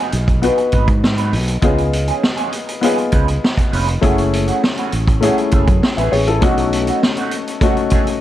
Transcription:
Already playing: B3 D#4 F#4 G#4
0.00 F#3
0.12 B1, muted clean electric guitar stroke, closed hi-hat
0.27 muted clean electric guitar stroke, kick, closed hi-hat
0.42 F#3 B3 D#4 F#4 G#4 B4, closed hi-hat
0.58 muted clean electric guitar stroke, closed hi-hat
0.72 G#1 F#3 B3 D#4 B4, kick, closed hi-hat
0.88 G#2, muted clean electric guitar stroke, kick, closed hi-hat
1.03 muted clean electric guitar stroke, snare
1.18 F#3 B3 D#4 B4, closed hi-hat
1.32 B1, muted clean electric guitar stroke, open hi-hat
1.48 muted clean electric guitar stroke, closed hi-hat
1.62 C#2 F3 B3 C#4 D#4 F4 G#4, kick, closed hi-hat
1.78 closed hi-hat
1.93 muted clean electric guitar stroke, closed hi-hat
2.08 F3 B3 C#4 G#4, closed hi-hat
2.23 muted clean electric guitar stroke, snare
2.37 F3 B3 C#4 G#4, closed hi-hat
2.52 muted clean electric guitar stroke, closed hi-hat
2.67 muted clean electric guitar stroke, closed hi-hat
2.81 F3 B3 C#4 D#4 F4 G#4, closed hi-hat
2.97 muted clean electric guitar stroke, closed hi-hat
3.12 C#2 F3 B3 C#4 B4, kick, closed hi-hat
3.28 muted clean electric guitar stroke, closed hi-hat
3.44 snare
3.57 muted clean electric guitar stroke, kick, closed hi-hat
3.72 F1 F3 B3 C#4 B4, open hi-hat
3.88 muted clean electric guitar stroke, closed hi-hat
4.01 F#1 E3 A3 C#4 E4 F#4 G#4, kick, closed hi-hat
4.18 closed hi-hat
4.33 muted clean electric guitar stroke, closed hi-hat
4.47 E3 A3 C#4 F#4, closed hi-hat
4.63 muted clean electric guitar stroke, snare
4.77 E3 A3 C#4 F#4, closed hi-hat
4.92 A1, muted clean electric guitar stroke, closed hi-hat
5.08 muted clean electric guitar stroke, kick, closed hi-hat
5.21 E3 A3 C#4 E4 F#4 G#4, closed hi-hat
5.38 muted clean electric guitar stroke, closed hi-hat
5.51 F#1 E3 A3 C#4 G#4, kick, closed hi-hat
5.67 F#2, muted clean electric guitar stroke, kick, closed hi-hat
5.83 muted clean electric guitar stroke, snare
5.97 A1 E3 A3 C#4 G#4 B4 E5, closed hi-hat
6.12 A1 G#4 C#5, muted clean electric guitar stroke, open hi-hat
6.28 E4 A4, muted clean electric guitar stroke, closed hi-hat
6.41 B1 F#3 A3 C#4 D#4 F#4, kick, closed hi-hat
6.58 closed hi-hat
6.73 muted clean electric guitar stroke, closed hi-hat
6.87 F#3 A3 D#4 F#4, closed hi-hat
7.03 muted clean electric guitar stroke, snare
7.17 F#3 A3 D#4 F#4, closed hi-hat
7.31 muted clean electric guitar stroke, closed hi-hat
7.47 muted clean electric guitar stroke, closed hi-hat
7.61 F#3 A3 C#4 D#4 F#4, kick, closed hi-hat
7.77 muted clean electric guitar stroke, closed hi-hat
7.90 F#3 A3 D#4 G#4, kick, closed hi-hat
8.07 muted clean electric guitar stroke, closed hi-hat

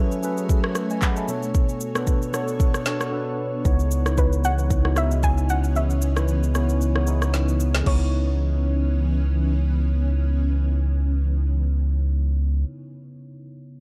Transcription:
Already playing: F#3 A3 C#4 F#4 G#4 A4 B4 C#5 E5 G#5
0.12 shaker
0.22 F#3 C#4 G#4 A4 B4, shaker
0.37 shaker
0.49 kick, shaker
0.64 cross-stick
0.75 cross-stick, shaker
0.90 D#5 G#5, shaker
1.02 F#5 B5, kick, clap, shaker
1.17 E5 A5, shaker
1.28 B2 B3 D4 A4 C#5, shaker
1.43 shaker
1.55 kick, shaker
1.69 shaker
1.81 shaker
1.95 B2 B3 D4 A4 B4, cross-stick, shaker
2.07 kick, shaker
2.22 shaker
2.33 B2 B3 D4 A4 C#5, cross-stick, shaker
2.48 shaker
2.60 kick, shaker
2.74 cross-stick, shaker
2.85 B2 B3 D4 A4 C#5, snare, shaker
3.01 cross-stick, shaker
3.12 B2 B3 D4 A4 B4
3.64 C#2 C#3 E3 B3 C#4 D#4 E4 C#5, kick, shaker
3.79 shaker
3.91 shaker
4.05 C#3 B3 D#4 E4 C#5, cross-stick, shaker
4.18 B4, kick, shaker
4.33 shaker
4.43 C#3 B3 D#4 E4 C#5 F#5, shaker
4.59 shaker
4.70 kick, shaker
4.84 C#3 B3 D#4 E4 F#4, cross-stick
4.96 C#3 B3 D#4 E4 D#5 E5, cross-stick, shaker
5.11 shaker
5.23 G#5, kick, shaker
5.38 shaker
5.49 F#5, shaker
5.64 shaker
5.75 C#3 B3 C#4 E4 C#5 E5, shaker
5.90 shaker
6.02 shaker
6.16 C#3 B3 C#4 E4 B4, cross-stick, shaker
6.28 shaker
6.43 shaker
6.54 C#3 B3 C#4 E4 C#5, cross-stick, shaker
6.69 shaker
6.81 shaker
6.95 C#3 B3 D#4 E4 C#5, cross-stick
7.06 C#3 B3 D#4 E4 G#4, shaker
7.22 cross-stick, shaker
7.34 snare, shaker
7.48 shaker
7.60 shaker
7.75 snare, shaker
7.82 C#3 B3
7.86 C#2 E3 B3 C#4 D#4 E4 C#5, kick, crash
7.91 C#5

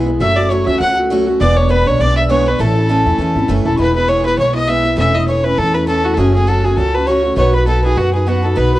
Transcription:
Already playing: B1
0.06 G#3 B3 E4
0.20 F#1 F#3 A3 C#4 F#4 E5 E6
0.37 A3 C#4 F#4 D5 D6
0.49 F#3 A3 C#4 F#4 C#5 C#6
0.66 C#2 A3 C#4 F#4 E5 E6
0.79 C#2 F#3 A3 C#4 F#4 F#5 F#6
0.97 A3 C#4 F#4
1.10 F#3 A3 C#4 F#4
1.26 A3 C#4 F#4
1.40 E1 E3 G#3 B3 D4 D5 D6
1.56 G#3 B3 D4 C#5
1.69 E3 G#3 B3 D4 B4 B5
1.86 B1 G#3 B3 D4 C#5 C#6
1.99 B1 E3 G#3 B3 D4 D5 D6
2.16 G#3 B3 D4 E5 E6
2.29 E3 G#3 B3 D4 C#5 C#6
2.46 G#3 B3 D4 B4
2.59 A1 A2 E3 A3 C#4 E4 A4 A5
2.76 A3 C#4 E4
2.87 A2 E3 A3 C#4 A5 B5
2.91 E4
3.06 E2 A3 C#4 E4
3.17 E2 E3 A3 C#4 G#5 A5
3.22 E4
3.35 G#1 A3 C#4 E4
3.48 F#1 A2 E3 A3 C#4 E4
3.65 E1 A3 C#4 E4 A4 A5
3.76 E1 E3 G#3 B3 E4 B4 B5 C#6
3.94 G#3 B3 E4 B4 B5
4.08 E3 G#3 B3 E4 C#5 C#6
4.24 G#3 B3 E4 B4 B5
4.37 B1 E3 G#3 B3 E4 C#5 C#6
4.54 G#3 B3 E4 D#5 D#6
4.68 E3 G#3 B3 E4 E5 E6
4.83 G#3 B3 E4
4.97 E1 E3 A3 C#4 E4 E5 E6
5.14 A3 C#4 E4 D#5 D#6
5.28 E3 A3 C#4 E4 C#5 C#6
5.44 A3 C#4 E4 B4 B5
5.57 E2 E3 A3 C#4 E4 A4 A5
5.73 C#4 E4 B4 B5
5.77 A3
5.87 E3 A3 C#4 E4 A4 A5
6.04 A3 C#4 E4 F#4 F#5
6.14 F#1 F#3 G#4 A4 G#5
6.18 A3 C#4 F#4
6.34 A3 F#4 G#4 G#5
6.47 F#3 A3 C#4 F#4 A4 A5
6.64 A3 C#4 F#4 G#4 G#5
6.77 C#2 F#3 A3 C#4 F#4 A4 A5
6.94 A3 C#4 F#4 B4
7.07 F#3 A3 C#4 F#4 C#5 C#6
7.24 A3 C#4 F#4
7.36 B1 B3 D#4 F#4 B4 C#5 C#6
7.53 D#4 F#4 B4 B5
7.66 B3 D#4 F#4 A4 B4 A5
7.82 D#4 F#4 G#4 B4 G#5
7.96 F#2 B3 D#4 F#4 B4 F#5
8.13 D#4 F#4 G#4 B4 G#5
8.26 B3 D#4 F#4 B4 F#5
8.42 D#4 F#4 A4 B4 A5
8.54 B1 B3 D#4 F#4 B4 B5
8.72 D#4 F#4 B4

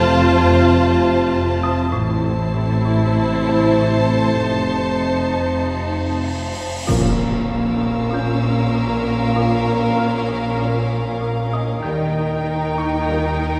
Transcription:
Already playing: F1 F2 C3 A3 C4 F4 C5 A5 F6 F#6
0.38 F2
1.31 F2
1.62 F2 D#6
1.92 A1 A2 C3 A3 C4 E4 C5 A5 C7
2.24 A2
2.54 A2 C#7
2.85 A2
3.16 A2
3.48 A2 C5
3.79 A2
4.09 A2
4.40 F1 F2 D#4, cymbal swell
4.72 F2
5.02 F2
5.34 F2
5.64 F2
5.95 F2
6.26 F2
6.87 A#1 A#2 A#3 C#4 F4 A#4 F5 A#5 E6, impact
7.19 A#3
7.50 A#2
7.81 A#2
8.11 A#2 A#3 C#4 F4 G6
8.42 A#2
8.74 A#2
9.05 A#2
9.35 A#2 A#3 C#4 F4
9.66 A#3
9.98 A#2 F6
10.29 A#2
10.59 A#2 A#3 C#4 F4
10.90 A#2
11.21 A#2
11.52 A#2 D#5 D#6
11.83 D#2 A#2 D#3 G3 A#3 D#4 A#4 G5
12.13 D#4
12.44 D#3
12.75 D#3 C#6
13.07 A#2 D#3 G3 A#3 D#4
13.37 D#3

